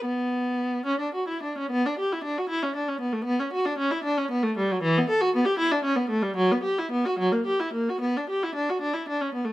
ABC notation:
X:1
M:6/8
L:1/16
Q:3/8=76
K:Bm
V:1 name="Viola"
B,6 C D F E D C | B, D G E D F E C D C B, A, | B, C F D C E D C B, A, G, F, | E, B, A F B, G E D C B, A, G, |
F, B, G E B, F F, ^A, G E A, F | B, D G E D F D E D C B, A, |]